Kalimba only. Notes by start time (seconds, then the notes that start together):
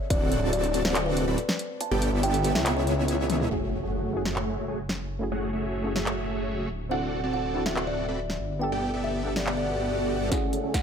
0.10 D5
0.53 D5
0.85 C5
1.06 B4
1.81 A5
2.23 G5
2.55 E5
2.77 C#5
6.91 F#5
7.34 F#5
7.66 E5
7.87 D5
8.61 G5
9.04 E5
9.36 D5
9.57 D5
10.32 F#5
10.74 F#5